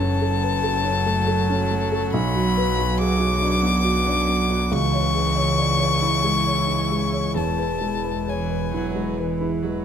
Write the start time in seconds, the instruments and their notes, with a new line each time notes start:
Already playing: double bass F#1, felt piano F#2 A4, cello F#3, ambient pad F#3 F#4 A4, violin A5
0.00 felt piano C#4
0.21 felt piano A4
0.43 felt piano B4
0.63 felt piano A4
0.85 felt piano C#4
1.06 felt piano A3
1.27 felt piano A4
1.50 felt piano C#4
1.71 felt piano A3
1.92 felt piano A4
2.14 double bass B1, felt piano B1, ambient pad B4, violin B5
2.36 felt piano F#4
2.57 felt piano B4
2.78 felt piano F#4
2.98 felt piano G#4, violin D6
3.19 felt piano F#4
3.41 felt piano D4
3.63 felt piano B3
3.84 felt piano F#4
4.06 felt piano D4
4.28 felt piano B3
4.50 felt piano F#4
4.71 double bass C#2, felt piano C#2, cello E3, ambient pad G#3 E4 C#5, violin C#6
4.93 felt piano C#5
5.14 felt piano G#4
5.35 felt piano C#5
5.58 felt piano D5
5.80 felt piano C#5
6.02 felt piano E4
6.24 felt piano G#3
6.46 felt piano C#5
6.68 felt piano E4
6.91 felt piano G#3
7.12 felt piano C#5
7.34 double bass E1, felt piano E2, ambient pad B4, violin A5
7.59 felt piano B4
7.81 felt piano G#3
8.04 felt piano B4
8.27 cello E3, felt piano C#5, violin G#5
8.50 felt piano B4
8.73 cello F#3, felt piano E4
8.95 felt piano G#3
9.18 cello E3, felt piano B4
9.41 felt piano E4
9.63 cello F#3, felt piano G#3